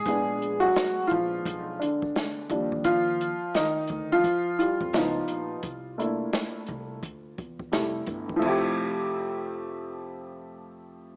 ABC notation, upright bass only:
X:1
M:4/4
L:1/16
Q:"Swing 16ths" 1/4=86
K:F
V:1 name="Upright bass" clef=bass
B,,,4 z2 B,,,2 _C,,2 z4 _E,,2- | _E,,3 z3 D,,2 z3 F,, _D,,2 B,,,2 | C,,4 z2 C,,2 D,,2 E,,2 F,,,2 G,,,2 | F,,,16 |]